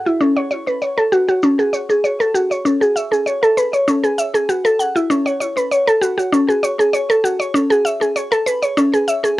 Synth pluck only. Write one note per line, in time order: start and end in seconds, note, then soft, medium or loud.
0.06 0.19 E4 medium
0.21 0.36 C#4 medium
0.37 0.49 C#5 medium
0.51 0.65 C#5 medium
0.67 0.80 B4 medium
0.82 0.97 C#5 medium
0.98 1.11 A4 medium
1.12 1.27 F#4 medium
1.29 1.42 F#4 medium
1.43 1.58 C#4 medium
1.59 1.72 G#4 medium
1.73 1.82 C#5 medium
1.90 2.03 G#4 medium
2.04 2.19 C#5 medium
2.20 2.34 A4 medium
2.34 2.50 F#4 medium
2.51 2.64 C#5 medium
2.65 2.81 C#4 medium
2.81 2.94 G#4 medium
2.96 3.05 E5 medium
3.12 3.25 G#4 medium
3.26 3.42 C#5 medium
3.43 3.56 A4 medium
3.57 3.72 B4 medium
3.73 3.86 C#5 medium
3.88 4.03 C#4 medium
4.04 4.17 G#4 medium
4.18 4.27 E5 medium
4.34 4.48 G#4 medium
4.49 4.64 F#4 medium
4.65 4.79 A4 medium
4.79 4.95 F#5 medium
4.96 5.09 E4 medium
5.10 5.25 C#4 medium
5.26 5.39 C#5 medium
5.40 5.55 C#5 medium
5.57 5.70 B4 medium
5.71 5.87 C#5 medium
5.87 6.01 A4 medium
6.01 6.16 F#4 medium
6.18 6.32 F#4 medium
6.32 6.48 C#4 medium
6.49 6.62 G#4 medium
6.63 6.72 C#5 medium
6.79 6.93 G#4 medium
6.93 7.09 C#5 medium
7.10 7.24 A4 medium
7.24 7.39 F#4 medium
7.40 7.53 C#5 medium
7.54 7.70 C#4 medium
7.70 7.84 G#4 medium
7.85 7.94 E5 medium
8.01 8.15 G#4 medium
8.16 8.31 C#5 medium
8.32 8.46 A4 medium
8.46 8.61 B4 medium
8.63 8.76 C#5 medium
8.77 8.93 C#4 medium
8.94 9.07 G#4 medium
9.08 9.17 E5 medium
9.24 9.38 G#4 medium